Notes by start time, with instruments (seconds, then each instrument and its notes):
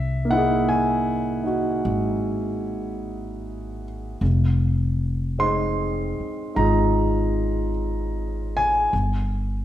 Already playing: upright bass C2, grand piano E5
0.25 grand piano A#3 D#4
0.31 grand piano E4 F#5
0.37 grand piano G#4
0.69 grand piano G#5
1.43 grand piano D#4 F#4
1.85 upright bass G#1
4.21 upright bass F1
5.38 grand piano G#3 C4 D#4 C6
6.20 muted upright bass stroke
6.55 upright bass G#1, grand piano D#4 F4 G#4 A#5
8.57 grand piano G#5
8.93 upright bass G1